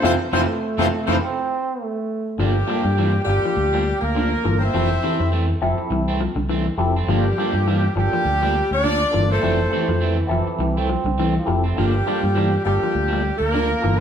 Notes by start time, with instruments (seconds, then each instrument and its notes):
0.02 fingered electric bass F2, clean electric guitar C3 E3 F3 A3 C4, horn section C4 F4 A4 C5, tine electric piano E4 F4 A4, trumpet C5
0.32 fingered electric bass F2, clean electric guitar C3 E3 F3 A3 C4, bass trombone A3, horn section C4 F4 A4 C5, tine electric piano E4 F4 A4, trumpet C5
0.78 fingered electric bass F2, clean electric guitar C3 E3 F3 A3 C4, horn section C4 F4 A4 C5, tine electric piano E4 F4 A4, trumpet C5
1.07 fingered electric bass F2, clean electric guitar C3 E3 F3 A3 C4, horn section C4 F4 A4 C5, tine electric piano E4 F4 A4
1.11 trumpet C5
1.21 bass trombone C4
1.82 bass trombone A3
2.38 fingered electric bass G1, clean electric guitar F3 A#3 D4, horn section G3 G4, tine electric piano A#3 D4 F4 A4
2.43 trumpet G4
2.54 muted clean electric guitar stroke
2.67 clean electric guitar F3 G3 A#3 D4, tine electric piano A#3 D4 F4 A4
2.85 fingered electric bass G2, muted clean electric guitar stroke
2.97 clean electric guitar E3 F3 A#3 D4
3.14 muted clean electric guitar stroke
3.25 fingered electric bass G1, horn section G3 G4, tine electric piano A#3 D4 F4 G4, trumpet G4
3.30 muted clean electric guitar stroke
3.43 clean electric guitar F3, muted fingered electric bass stroke, muted clean electric guitar stroke
3.56 fingered electric bass D2, muted clean electric guitar stroke
3.73 clean electric guitar F3 G3 A#3 D4
3.85 muted clean electric guitar stroke
4.01 fingered electric bass D2, horn section A#3 A#4, trumpet A#4
4.15 clean electric guitar D3 F3 A#3 D4
4.31 muted clean electric guitar stroke
4.43 fingered electric bass G1, clean electric guitar E3, tine electric piano A#3 D4 F4 A4, muted clean electric guitar stroke
4.59 clean electric guitar A#3, horn section C4 C5, muted clean electric guitar stroke
4.64 trumpet E5
4.73 fingered electric bass F1, clean electric guitar E3 F3 A3 C4, tine electric piano C4 E4 G4 A4
4.90 muted clean electric guitar stroke
5.03 clean electric guitar E3 C4, tine electric piano C4 E4 G4 A4
5.20 fingered electric bass F2, muted clean electric guitar stroke
5.32 clean electric guitar E3 A3 C4
5.48 muted clean electric guitar stroke
5.61 fingered electric bass F1, clean electric guitar F3, tine electric piano C4 E4 G4 A4
5.78 muted clean electric guitar stroke
5.90 fingered electric bass C2, clean electric guitar E3, muted clean electric guitar stroke
6.08 clean electric guitar E3 A3 C4
6.21 clean electric guitar F3, muted clean electric guitar stroke
6.35 fingered electric bass C2, clean electric guitar D3
6.49 clean electric guitar E3 A3 C4
6.67 muted clean electric guitar stroke
6.78 fingered electric bass F1, clean electric guitar F3, tine electric piano C4 E4 G4 A4, muted clean electric guitar stroke
6.96 clean electric guitar A3 C4
7.07 fingered electric bass G1, clean electric guitar F3 A#3 D4, horn section G3 G4, tine electric piano A#3 D4 F4 A4, trumpet G4
7.26 muted clean electric guitar stroke
7.37 clean electric guitar F3 G3 A#3 D4, tine electric piano A#3 D4 F4 A4
7.54 fingered electric bass G2, muted clean electric guitar stroke
7.68 clean electric guitar E3 F3 A#3 D4
7.84 muted clean electric guitar stroke
7.95 fingered electric bass G1, clean electric guitar F3, horn section G3 G4, tine electric piano A#3 D4 F4 A4, trumpet G4
8.13 clean electric guitar F3, muted clean electric guitar stroke
8.25 fingered electric bass D2, muted clean electric guitar stroke
8.42 clean electric guitar F3 G3 A#3 D4
8.55 muted clean electric guitar stroke
8.71 fingered electric bass D2, horn section D4 D5, trumpet D5
8.84 clean electric guitar D3 F3 A#3 D4
9.01 muted clean electric guitar stroke
9.11 fingered electric bass G1, clean electric guitar E3, tine electric piano A#3 D4 F4 A4, muted clean electric guitar stroke
9.30 horn section A3 A4, clean electric guitar A#3 D4, trumpet C5
9.41 fingered electric bass F1, clean electric guitar E3 F3 A3 C4, tine electric piano C4 E4 G4 A4
9.60 muted clean electric guitar stroke
9.69 clean electric guitar E3 A3 C4, tine electric piano C4 E4 G4 A4
9.88 fingered electric bass F2, clean electric guitar F3, muted clean electric guitar stroke
10.01 clean electric guitar E3 A3 C4, bass trombone E3
10.19 muted clean electric guitar stroke
10.27 fingered electric bass F1, tine electric piano C4 E4 G4 A4
10.31 clean electric guitar F3
10.47 muted clean electric guitar stroke
10.59 fingered electric bass C2, clean electric guitar E3, muted clean electric guitar stroke
10.77 clean electric guitar E3 A3 C4, bass trombone C4
10.90 clean electric guitar F3, muted clean electric guitar stroke
11.04 fingered electric bass C2, clean electric guitar D3
11.18 clean electric guitar E3 A3 C4
11.35 bass trombone F3, muted clean electric guitar stroke
11.45 fingered electric bass F1, clean electric guitar F3, tine electric piano C4 E4 G4 A4, muted clean electric guitar stroke
11.64 clean electric guitar A3 C4
11.76 fingered electric bass G1, clean electric guitar F3 A#3 D4, horn section G3 G4, tine electric piano A#3 D4 F4 A4, trumpet G4
11.94 muted clean electric guitar stroke
12.06 clean electric guitar F3 G3 A#3 D4, tine electric piano A#3 D4 F4 A4
12.22 fingered electric bass G2, muted clean electric guitar stroke
12.35 clean electric guitar E3 F3 A#3 D4
12.51 muted clean electric guitar stroke
12.65 fingered electric bass G1, horn section G3 G4, clean electric guitar G3, tine electric piano A#3 D4 F4 A4, trumpet G4
12.80 clean electric guitar F3, muted clean electric guitar stroke, muted fingered electric bass stroke
12.92 fingered electric bass D2, muted clean electric guitar stroke
13.08 clean electric guitar F3 A#3 D4
13.13 clean electric guitar G3
13.23 muted clean electric guitar stroke
13.38 fingered electric bass D2, horn section A#3 A#4, trumpet A#4
13.52 clean electric guitar D3 F3 A#3 D4
13.69 muted clean electric guitar stroke
13.81 fingered electric bass G1, clean electric guitar E3, tine electric piano A#3 D4 F4 A4, muted clean electric guitar stroke